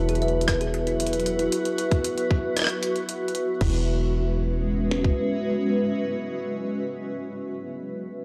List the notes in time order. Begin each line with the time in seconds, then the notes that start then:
Already playing: E1 F#4 B4 E5
0.09 G#4, closed hi-hat
0.15 closed hi-hat
0.22 E5, closed hi-hat
0.28 closed hi-hat
0.41 closed hi-hat
0.48 kick, cross-stick, closed hi-hat
0.61 G#4, closed hi-hat
0.74 closed hi-hat
0.87 E4, closed hi-hat
1.00 closed hi-hat
1.07 closed hi-hat
1.13 closed hi-hat
1.20 closed hi-hat
1.26 closed hi-hat
1.39 E4, closed hi-hat
1.52 closed hi-hat
1.65 closed hi-hat
1.78 closed hi-hat
1.92 kick, closed hi-hat
2.04 closed hi-hat
2.18 closed hi-hat
2.31 kick
2.57 cross-stick, closed hi-hat
2.59 cross-stick
2.62 cross-stick
2.64 cross-stick
2.67 cross-stick, closed hi-hat
2.83 closed hi-hat
2.96 closed hi-hat
3.09 closed hi-hat
3.28 closed hi-hat
3.35 closed hi-hat
3.61 E1 G#3 E4, kick, crash
3.69 C#4
3.77 F#4
3.85 B4
3.92 E5
4.91 snare
5.04 kick